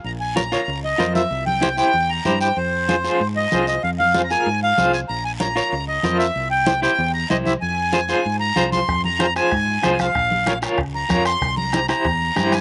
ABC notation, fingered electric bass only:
X:1
M:4/4
L:1/8
Q:1/4=190
K:Fm
V:1 name="Fingered electric bass" clef=bass
B,,,4 D,,2 F,,2 | C,,4 =E,,2 G,,2 | F,,4 A,,2 C,,2 | F,,4 A,,2 C,,2 |
B,,,4 D,,2 F,,2 | C,,4 =E,,2 C,,2 | F,,4 A,,2 C,,2 | F,,4 A,,2 C,,2 |
B,,,4 D,,2 F,,2 | C,,4 =E,,2 G,,2 |]